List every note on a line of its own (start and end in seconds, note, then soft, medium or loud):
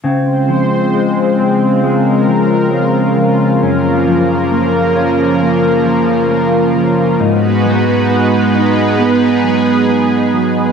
0.03 7.16 C#3 medium
0.03 3.62 C#3 medium
0.03 3.58 G#3 medium
0.03 3.58 C4 medium
0.03 1.37 C4 medium
0.03 7.16 F4 medium
0.03 1.80 C5 medium
0.49 2.27 F3 soft
0.94 1.82 G#3 medium
1.39 3.62 C4 medium
1.83 2.71 G#3 medium
1.83 3.60 A#4 medium
2.27 3.16 F3 soft
2.72 3.70 G#3 soft
3.16 4.06 F3 soft
3.61 7.19 F#2 medium
3.61 7.16 F3 medium
3.61 7.16 A#3 medium
3.61 4.94 C#4 medium
3.61 7.16 A#4 medium
4.06 5.84 F3 soft
4.51 5.40 A#3 soft
4.96 7.20 C#4 medium
5.41 6.29 A#3 soft
5.85 6.74 F3 soft
6.30 7.29 A#3 soft
6.75 7.29 F3 soft
7.20 10.72 G#2 medium
7.20 10.72 G#3 medium
7.20 10.72 B3 medium
7.20 8.53 D#4 medium
7.20 10.72 D#4 medium
7.20 8.97 F#4 medium
7.20 10.72 B4 medium
7.65 9.43 F#3 soft
8.10 8.98 B3 medium
8.55 10.72 D#4 medium
9.00 9.87 B3 medium
9.00 10.72 G#4 medium
9.44 10.33 F#3 soft
9.89 10.72 B3 soft
10.34 10.72 F#3 soft